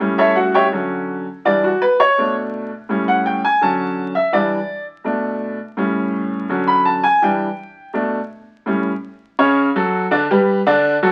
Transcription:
0.00 A2 G3 C#4
0.18 E4 A4 C#5 E5
0.36 F#4 F#5
0.54 G4 C#5 E5 G5
0.72 D3 F#3 C#4
1.45 E3 G3 D4 D5
1.64 F#4
1.82 B4
2.00 C#5
2.18 B2 A3 D4
2.89 A2 G3 C#4
3.08 F#5
3.26 G5
3.45 G#5
3.61 D3 F#3 C#4 A5
4.15 E5
4.33 E3 G3 D4 D5
5.04 B2 A3 D4
5.77 A2 G3 C#4
6.49 D3 F#3 C#4
6.67 B5
6.85 A5
7.03 G#5
7.22 E3 G3 D4 G5
7.93 B2 A3 D4
8.66 A2 G3 C#4
9.39 C#3 C#4 C#5
9.76 F#3 F#4 A4
10.11 D3 D4 D5
10.31 G3 G4 B4
10.67 D3 D4 D5
11.03 F#3 F#4 A4

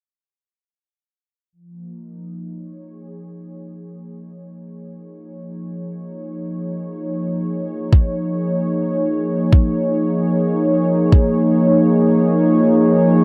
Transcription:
1.53 F3
1.66 A#3
1.91 D#4
2.50 C#5
2.77 G#4
7.93 kick
9.53 kick
11.12 kick

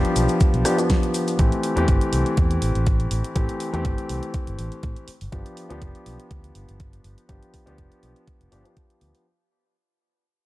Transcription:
Already playing: F3 B3 D4 G4
0.05 closed hi-hat
0.16 B1, open hi-hat, cabasa
0.28 closed hi-hat, cabasa
0.40 kick, closed hi-hat, cabasa
0.54 B1, closed hi-hat
0.65 F3 B3 D4 G4, cross-stick, open hi-hat, cabasa
0.78 F3 B3 D4 G4, closed hi-hat, cabasa
0.90 kick, snare, closed hi-hat, cabasa
1.03 closed hi-hat
1.14 open hi-hat, cabasa
1.28 open hi-hat, cabasa
1.39 A1 E3 A3 C4 G4, kick, closed hi-hat
1.52 closed hi-hat
1.63 open hi-hat
1.76 E2 E3 A3 C4 G4, closed hi-hat
1.88 G1, kick, closed hi-hat
2.01 closed hi-hat
2.13 C2, open hi-hat
2.26 closed hi-hat
2.37 E2, kick, closed hi-hat
2.51 closed hi-hat
2.62 A1, open hi-hat
2.75 A1, closed hi-hat
2.87 kick, closed hi-hat
3.00 closed hi-hat
3.11 A1, open hi-hat
3.24 closed hi-hat
3.35 A1 E3 A3 C4 G4, kick, closed hi-hat
3.49 closed hi-hat
3.60 open hi-hat
3.73 E2 E3 A3 C4 G4, closed hi-hat
3.85 G1, kick, closed hi-hat
3.98 closed hi-hat
4.09 C2, open hi-hat
4.23 closed hi-hat
4.34 kick, closed hi-hat
4.47 G1, closed hi-hat
4.59 A1, open hi-hat
4.72 muted fingered electric bass stroke, closed hi-hat
4.83 A2, kick, closed hi-hat
4.96 closed hi-hat
5.08 muted fingered electric bass stroke, open hi-hat
5.21 G1, open hi-hat
5.32 G1 F3 B3 D4 G4, kick, closed hi-hat
5.46 closed hi-hat
5.57 open hi-hat
5.69 D2 F3 B3 D4 G4, closed hi-hat
5.82 F1, kick, closed hi-hat
5.95 closed hi-hat
6.06 B1, open hi-hat
6.20 closed hi-hat
6.31 D2, kick, closed hi-hat
6.44 closed hi-hat
6.55 G1, open hi-hat
6.69 G1, closed hi-hat
6.80 kick, closed hi-hat
6.93 closed hi-hat
7.04 G1, open hi-hat
7.18 closed hi-hat
7.29 G1 F3 B3 D4 G4, kick, closed hi-hat
7.43 closed hi-hat
7.54 kick, open hi-hat
7.66 D2 F3 B3 D4 G4, closed hi-hat
7.78 F1, kick, closed hi-hat
7.92 closed hi-hat
8.03 B1, open hi-hat
8.16 closed hi-hat
8.28 kick, closed hi-hat
8.41 F1, closed hi-hat
8.51 G1 F3 B3 D4 G4, open hi-hat
8.64 F3 B3 D4 G4, closed hi-hat
8.77 kick, closed hi-hat
8.90 closed hi-hat
9.01 D2, open hi-hat
9.15 open hi-hat

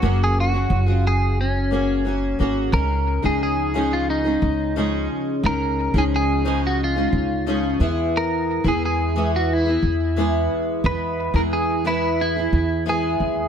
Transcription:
Already playing: F#4
0.02 F#1 F#3 A#3 C#4 F#4 G#4
0.24 G#4
0.40 F#4
0.53 C#4 F#4 G#4
0.70 F#1
0.86 C#4 F4 F#4 G#4
1.07 G#4
1.41 C#4
1.71 A#3 C#4 F#4 G#4
2.05 A#3 C#4 F#4 G#4
2.39 G#1 A#3 C#4 F#4 G#4
2.73 C#2 G#3 C#4 D#4 G#4 A#4
3.22 C#2 C#3 F3 G#3 C#4 D#4 G#4
3.43 G#4
3.74 C#3 F3 G#3 C#4 D#4 G#4
3.93 F4
4.10 D#4
4.24 G#3 C#4 D#4 G#4
4.42 C#2
4.76 C#3 F3 G#3 C#4 D#4 G#4
5.43 C#2 G#3 C#4 D#4 G#4 A#4
5.94 C#2 C#3 F3 G#3 C#4 D#4 G#4
5.98 G#4
6.16 G#4
6.45 C#3 F3 G#3 C#4 D#4 G#4
6.67 F#4
6.84 F4
6.96 G#3 C#4 D#4 G#4
7.12 C#2
7.46 C#3 F3 G#3 C#4 D#4 G#4
7.80 E2 E3 G#3 B3 E4 G#4
8.17 A#4
8.64 E2 E3 G#3 B3 E4 G#4
8.68 G#4
8.85 G#4
9.16 E3 G#3 B3 E4 G#4
9.36 F#4
9.53 E4
9.65 B3 E4 G#4
9.82 E2
10.16 E3 G#3 B3 E4 G#4
10.84 E2 G#3 B3 E4 G#4 B4
11.34 E2 E3 G#3 B3 E4 G#4 A#4
11.53 G#4
11.84 E3 G#3 B3 E4 G#4
12.21 E4
12.35 B3 E4 G#4
12.53 E2
12.86 G#3 B3 E4 G#4
13.20 D#2

